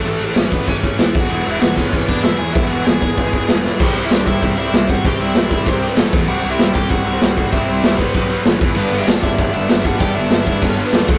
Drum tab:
CC |xxxxxxxx|xxxxxxxx|xxxxxxx-|x-x-x-x-|
SD |--o---o-|--o---o-|--o---oo|--o---o-|
BD |---ooo-o|---ooo--|o--ooo--|o--oo--o|

CC |x-x-x-xx|x-x-x-x-|x-x-x-xx|x-x-x-x-|
SD |--o---o-|--o---o-|--o---o-|--o---o-|
BD |o--oo--o|---oo--o|o--oo--o|---oo--o|

CC |x-x-x-xx|
SD |--o---o-|
BD |o--oo--o|